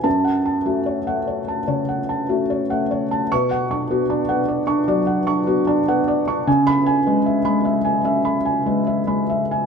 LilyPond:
<<
  \new Staff \with { instrumentName = "Felt piano" } { \time 4/4 \key fis \minor \tempo 4 = 74 << { a''8 r2. r8 | cis'''8 r2. r8 | r16 b''8 r2. r16 | } \\ { r16 fis''16 a''16 fis'16 cis''16 fis''16 cis''16 a''16 cis''16 fis''16 a''16 fis'16 cis''16 fis''16 cis''16 a''16 | r16 fis''16 cis'''16 fis'16 d''16 fis''16 d''16 cis'''16 d''16 fis''16 cis'''16 fis'16 d''16 fis''16 d''16 cis'''16 | gis''8 gis''16 b'16 e''16 b''16 e''16 gis''16 e''16 b''16 gis''16 b'16 e''16 b''16 e''16 gis''16 | } >> }
  \new Staff \with { instrumentName = "Felt piano" } { \time 4/4 \key fis \minor fis,8. a8 a8 r16 cis8 r16 a8 a8 r16 | b,8 d'16 b16 d'16 b8 d'16 fis8 d'16 b16 d'16 b8 d'16 | cis8. gis8 gis8 r16 cis'8 r16 gis8 gis8 r16 | }
>>